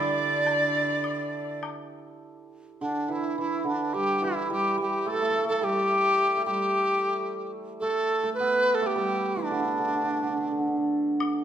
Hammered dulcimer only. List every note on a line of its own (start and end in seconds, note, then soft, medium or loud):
0.00 3.63 D4 medium
0.00 3.23 E4 medium
0.00 2.48 G4 medium
0.00 2.21 A4 medium
2.81 3.14 D3 medium
3.08 3.37 E3 medium
3.38 3.70 E3 medium
3.64 4.28 D3 medium
3.94 4.50 G3 medium
4.22 9.36 E3 medium
4.50 4.77 G3 medium
4.78 5.12 G3 medium
5.06 5.13 A3 medium
5.13 5.21 A3 medium
5.22 5.30 A3 medium
5.30 5.35 A3 medium
5.36 5.44 A3 medium
5.44 5.50 A3 medium
5.50 6.37 A3 medium
5.61 6.43 G3 medium
6.37 7.81 A3 soft
6.46 7.88 G3 medium
7.82 8.23 A3 medium
8.24 8.82 A3 medium
8.40 11.44 B3 medium
8.82 11.44 A3 medium
8.96 11.44 G3 medium
9.37 9.57 E3 medium
9.51 9.59 D3 medium
9.59 9.65 D3 soft
9.65 9.73 D3 soft
9.74 9.79 D3 soft
9.79 9.87 D3 soft
9.87 9.95 D3 soft
9.95 10.03 D3 soft
10.03 10.08 D3 soft
10.08 10.15 D3 soft
10.16 10.22 D3 soft
10.23 10.29 D3 soft
10.30 10.36 D3 soft
10.36 10.45 D3 soft
10.45 10.51 D3 soft
10.51 10.59 D3 soft
10.59 10.67 D3 soft
10.67 10.76 D3 soft
10.77 11.44 D3 soft